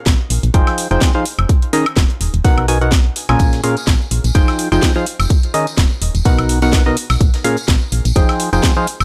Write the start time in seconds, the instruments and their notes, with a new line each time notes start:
0.06 fm bass A#1, kick, snare, closed hi-hat
0.30 fm bass A#1, closed hi-hat, open hi-hat
0.43 fm bass A#1, closed hi-hat
0.54 synth stab F3 D#4 F4 G#4 C5 G5, kick, closed hi-hat
0.67 snare, closed hi-hat, high woodblock
0.78 closed hi-hat, open hi-hat
0.91 fm bass F1, synth stab F3 D#4 F4 G#4 C5 G5, closed hi-hat
1.01 kick, snare, closed hi-hat
1.15 synth stab F3 D#4 F4 G#4 C5 F5
1.25 closed hi-hat, open hi-hat
1.39 fm bass F1, closed hi-hat, high woodblock
1.49 kick, closed hi-hat
1.62 closed hi-hat
1.73 synth stab D#3 C#4 D#4 G#4 A#4 D#5, closed hi-hat, open hi-hat
1.86 closed hi-hat, high woodblock
1.97 fm bass D#1, kick, snare, closed hi-hat
2.10 closed hi-hat
2.21 fm bass D#1, closed hi-hat, open hi-hat
2.34 fm bass D#1, closed hi-hat
2.44 synth stab B2 B3 D#4 F#4 A#4 F#5, kick, closed hi-hat, open hi-hat
2.58 fm bass B1, closed hi-hat, high woodblock
2.68 synth stab B2 B3 D#4 F#4 A#4 G#5, closed hi-hat, open hi-hat
2.81 synth stab B2 B3 D#4 F#4 A#4 F#5, closed hi-hat
2.92 kick, snare, closed hi-hat
3.16 closed hi-hat, open hi-hat
3.29 fm bass B1, synth stab A#2 C#4 F4 G#4 A#4 G#5, snare, closed hi-hat, high woodblock
3.39 fm bass A#1, kick, closed hi-hat, tambourine
3.53 snare, closed hi-hat, tambourine
3.64 synth stab A#2 C#4 F4 G#4 A#4 F5, closed hi-hat, open hi-hat
3.77 closed hi-hat, tambourine
3.87 fm bass A#1, kick, snare, closed hi-hat, tambourine
4.02 tambourine
4.11 fm bass A#1, closed hi-hat, open hi-hat
4.24 fm bass A#1, closed hi-hat, tambourine
4.35 synth stab F3 D#4 F4 G#4 C5 G5, kick, closed hi-hat, tambourine
4.48 snare, closed hi-hat, tambourine, high woodblock
4.59 closed hi-hat, open hi-hat
4.72 fm bass F1, synth stab F3 D#4 F4 G#4 C5 G5, closed hi-hat, tambourine
4.82 kick, snare, closed hi-hat, tambourine
4.95 synth stab F3 D#4 F4 G#4 C5 F5, tambourine
5.06 closed hi-hat, open hi-hat
5.19 fm bass F1, closed hi-hat, tambourine, high woodblock
5.30 kick, closed hi-hat, tambourine
5.43 closed hi-hat, tambourine
5.54 synth stab D#3 C#4 D#4 G#4 A#4 D#5, closed hi-hat, open hi-hat
5.67 closed hi-hat, tambourine
5.77 fm bass D#1, kick, snare, closed hi-hat, tambourine
5.91 tambourine
6.02 fm bass D#1, closed hi-hat, open hi-hat
6.15 fm bass D#1, closed hi-hat, tambourine
6.25 synth stab B2 B3 D#4 F#4 A#4 F#5, kick, closed hi-hat, open hi-hat, tambourine
6.39 fm bass B1, closed hi-hat, tambourine, high woodblock
6.49 closed hi-hat, open hi-hat
6.62 synth stab B2 B3 D#4 F#4 A#4 F#5, closed hi-hat, tambourine
6.73 kick, snare, closed hi-hat, tambourine
6.86 synth stab B2 B3 D#4 F#4 A#4 D#5, tambourine
6.97 closed hi-hat, open hi-hat
7.10 fm bass B1, snare, closed hi-hat, tambourine, high woodblock
7.21 fm bass A#1, kick, closed hi-hat, tambourine
7.34 snare, closed hi-hat, tambourine
7.44 synth stab A#2 C#4 F4 G#4 A#4 F5, closed hi-hat, open hi-hat
7.57 closed hi-hat, tambourine
7.68 fm bass A#1, kick, snare, closed hi-hat, tambourine
7.81 tambourine
7.92 fm bass A#1, closed hi-hat, open hi-hat
8.05 fm bass A#1, closed hi-hat, tambourine
8.15 synth stab F3 D#4 F4 G#4 C5 G5, kick, closed hi-hat, tambourine
8.29 snare, closed hi-hat, tambourine, high woodblock
8.40 closed hi-hat, open hi-hat
8.53 fm bass F1, synth stab F3 D#4 F4 G#4 C5 G5, closed hi-hat, tambourine
8.63 kick, snare, closed hi-hat, tambourine
8.76 synth stab F3 D#4 F4 G#4 C5 F5, tambourine
8.87 closed hi-hat, open hi-hat
9.00 fm bass F1, closed hi-hat, tambourine, high woodblock